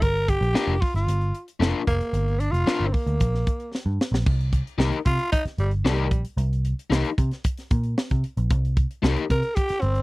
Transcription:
0.02 0.37 G1 loud
0.02 0.30 A#4 loud
0.02 kick medium
0.02 closed hi-hat medium
0.16 closed hi-hat soft
0.28 0.82 G4 loud
0.28 kick medium
0.28 closed hi-hat medium
0.41 0.53 A#1 medium
0.41 closed hi-hat medium
0.54 0.72 D4 medium
0.54 0.72 F4 medium
0.54 0.73 A#4 medium
0.54 muted picked electric bass stroke soft
0.54 snare loud
0.67 0.79 F1 medium
0.67 closed hi-hat soft
0.81 0.94 F4 medium
0.81 kick medium
0.81 open hi-hat medium
0.94 1.06 G1 medium
0.94 1.45 F4 medium
0.94 snare soft
0.94 closed hi-hat soft
1.08 1.31 G1 medium
1.08 closed hi-hat loud
1.21 closed hi-hat soft
1.35 closed hi-hat medium
1.48 closed hi-hat soft
1.60 1.72 F1 medium
1.60 1.80 D4 medium
1.60 1.81 F4 loud
1.60 1.81 A#4 loud
1.60 snare loud
1.87 1.99 F1 medium
1.87 2.41 A#3 medium
1.87 kick medium
1.87 closed hi-hat medium
2.01 closed hi-hat medium
2.13 2.48 G1 loud
2.13 closed hi-hat medium
2.28 closed hi-hat soft
2.40 2.53 D4 medium
2.40 closed hi-hat medium
2.51 2.65 F1 medium
2.51 2.88 F4 loud
2.51 closed hi-hat medium
2.67 2.85 D4 medium
2.67 2.85 F4 medium
2.67 2.85 A#4 loud
2.67 muted picked electric bass stroke soft
2.67 snare loud
2.80 2.92 G1 medium
2.80 closed hi-hat soft
2.86 2.95 C4 medium
2.93 3.73 A#3 medium
2.93 kick medium
2.93 open hi-hat medium
3.06 3.18 D2 medium
3.06 closed hi-hat soft
3.20 3.44 A#1 medium
3.20 kick medium
3.20 closed hi-hat loud
3.34 snare soft
3.47 kick medium
3.47 closed hi-hat medium
3.60 closed hi-hat soft
3.75 snare medium
3.86 3.98 G2 medium
4.01 snare loud
4.12 4.24 A#1 medium
4.12 snare loud
4.26 4.61 C2 loud
4.26 kick loud
4.26 crash loud
4.41 closed hi-hat soft
4.53 kick medium
4.53 closed hi-hat medium
4.67 closed hi-hat medium
4.78 4.90 C2 medium
4.78 4.96 D#4 medium
4.78 4.97 G4 medium
4.78 4.97 A#4 loud
4.78 snare loud
4.92 closed hi-hat medium
5.06 5.17 C3 medium
5.06 5.30 F4 loud
5.06 kick loud
5.06 closed hi-hat medium
5.19 closed hi-hat medium
5.32 5.44 D#4 loud
5.32 kick loud
5.32 closed hi-hat loud
5.45 muted picked electric bass stroke soft
5.45 snare soft
5.45 closed hi-hat medium
5.58 5.82 G1 medium
5.58 5.71 G3 medium
5.58 closed hi-hat medium
5.71 closed hi-hat soft
5.85 6.11 C2 medium
5.85 6.23 G3 medium
5.85 6.05 D#4 medium
5.85 6.05 G4 medium
5.85 6.06 A#4 loud
5.85 snare loud
5.98 closed hi-hat medium
6.11 6.23 A#1 loud
6.11 kick medium
6.11 closed hi-hat medium
6.25 closed hi-hat medium
6.37 6.72 C2 loud
6.37 closed hi-hat loud
6.53 closed hi-hat medium
6.65 closed hi-hat medium
6.79 closed hi-hat medium
6.90 7.02 C2 medium
6.90 7.08 D#4 medium
6.90 7.09 G4 medium
6.90 7.09 A#4 medium
6.90 snare loud
7.05 closed hi-hat medium
7.18 7.30 C3 loud
7.18 kick medium
7.18 closed hi-hat medium
7.31 snare soft
7.31 closed hi-hat soft
7.44 kick medium
7.44 closed hi-hat loud
7.58 snare soft
7.58 closed hi-hat medium
7.71 7.94 A#2 medium
7.71 kick loud
7.71 closed hi-hat medium
7.83 closed hi-hat soft
7.98 snare loud
8.10 8.22 C3 medium
8.10 kick medium
8.10 closed hi-hat soft
8.24 closed hi-hat medium
8.37 8.51 A#1 medium
8.37 closed hi-hat medium
8.50 8.85 C2 loud
8.50 kick loud
8.50 closed hi-hat medium
8.65 closed hi-hat soft
8.77 kick medium
8.77 closed hi-hat medium
8.91 closed hi-hat soft
9.02 9.15 C2 loud
9.02 9.23 D#4 medium
9.02 9.23 G4 loud
9.02 9.23 A#4 loud
9.02 snare loud
9.17 closed hi-hat medium
9.30 9.41 C3 loud
9.30 9.57 A#4 loud
9.30 kick medium
9.30 closed hi-hat medium
9.43 closed hi-hat medium
9.55 9.82 G4 loud
9.55 kick loud
9.55 closed hi-hat loud
9.69 muted picked electric bass stroke soft
9.69 snare soft
9.69 closed hi-hat medium
9.81 10.02 G1 loud
9.81 10.02 C4 loud
9.81 closed hi-hat medium
9.95 closed hi-hat soft

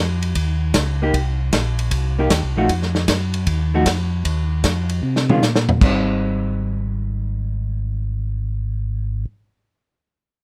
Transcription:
0.00 0.34 F2 medium
0.22 ride soft
0.35 0.73 D#2 medium
0.35 kick soft
0.35 ride medium
0.74 1.12 C#2 medium
0.74 kick soft
0.74 snare medium
0.74 hi-hat pedal medium
0.74 ride medium
1.02 1.13 A#3 medium
1.02 1.13 D#4 medium
1.02 1.14 G4 medium
1.14 1.51 C2 medium
1.14 kick soft
1.14 ride medium
1.53 1.90 A#1 medium
1.53 kick soft
1.53 snare medium
1.53 hi-hat pedal medium
1.53 ride medium
1.79 ride soft
1.91 2.29 C2 medium
1.91 kick soft
1.91 ride medium
2.19 2.30 A#3 medium
2.19 2.30 D#4 medium
2.19 2.30 G4 medium
2.30 2.43 D#2 medium
2.30 kick soft
2.30 snare medium
2.30 hi-hat pedal medium
2.30 ride medium
2.43 2.56 C2 medium
2.56 2.68 A#1 medium
2.56 2.68 F3 medium
2.56 2.69 A3 medium
2.56 2.69 D#4 medium
2.56 2.69 F#4 medium
2.69 3.07 F2 medium
2.69 kick soft
2.69 ride medium
2.82 snare soft
2.95 snare soft
3.08 3.46 F#2 medium
3.08 kick soft
3.08 snare medium
3.08 hi-hat pedal medium
3.08 ride medium
3.34 ride soft
3.47 3.85 D#2 medium
3.47 kick soft
3.47 ride medium
3.74 3.85 F3 medium
3.74 3.86 A3 medium
3.74 3.86 D#4 medium
3.74 3.86 F#4 medium
3.86 4.24 F2 medium
3.86 kick soft
3.86 snare medium
3.86 hi-hat pedal medium
3.86 ride medium
4.25 4.63 D#2 medium
4.25 kick soft
4.25 ride medium
4.64 5.02 F2 medium
4.64 kick soft
4.64 snare medium
4.64 hi-hat pedal soft
4.64 ride medium
4.89 ride soft
5.03 5.41 C3 medium
5.16 snare soft
5.29 5.41 D#3 medium
5.29 5.41 G#3 medium
5.29 5.42 C#4 medium
5.29 5.42 F4 medium
5.29 mid tom medium
5.42 5.80 A#2 medium
5.42 snare medium
5.42 hi-hat pedal medium
5.56 snare medium
5.69 floor tom medium
5.81 9.26 G#1 medium
5.81 9.30 G3 medium
5.81 9.32 C4 medium
5.81 9.33 D#4 medium
5.81 kick medium
5.81 china medium

